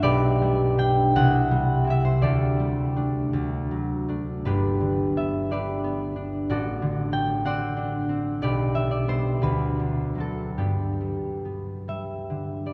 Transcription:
Already playing: D4 E5
0.02 B1 G4 B4 D5
0.42 G3
0.78 D4 G5
1.16 C2 F#5
1.51 G3
1.84 C4 E4
1.90 E5
2.05 C5
2.22 D2 G4 A4 D5
2.60 G3
2.96 A3 D4
3.33 D2
3.71 F#3
4.08 A3 D4
4.45 G1 D4 G4 B4
4.80 D3
5.17 B3 E5
5.51 D4 G4 B4 D5
5.84 B3
6.16 D4
6.50 A1 F#4 A4 D5
6.82 D3
7.12 A3 G5
7.45 C4 C5 D5 F#5
7.77 D4
8.09 C4
8.42 B1 G4 B4 D5
8.74 D3 E5
8.91 D5
9.08 G3 B3 C5
9.42 D2 B4
9.80 D3
10.15 F#3 C4
10.20 A4
10.58 G2 B3 D4 G4
11.01 G3
11.45 B3
11.88 G3 E5
12.30 D3
12.66 G3 D5

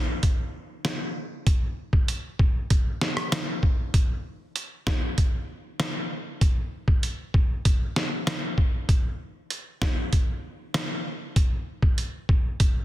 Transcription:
0.23 kick, closed hi-hat
0.85 snare, closed hi-hat
1.47 kick, closed hi-hat
1.93 kick
2.08 closed hi-hat
2.39 kick
2.70 kick, closed hi-hat
3.01 snare
3.17 cross-stick
3.32 snare, closed hi-hat
3.63 kick
3.94 kick, closed hi-hat
4.56 closed hi-hat
4.87 kick, snare
5.18 kick, closed hi-hat
5.80 snare, closed hi-hat
6.41 kick, closed hi-hat
6.88 kick
7.03 closed hi-hat
7.34 kick
7.65 kick, closed hi-hat
7.96 snare
8.27 snare, closed hi-hat
8.58 kick
8.89 kick, closed hi-hat
9.50 closed hi-hat
9.82 kick, snare
10.13 kick, closed hi-hat
10.74 snare, closed hi-hat
11.36 kick, closed hi-hat
11.82 kick
11.98 closed hi-hat
12.29 kick
12.60 kick, closed hi-hat

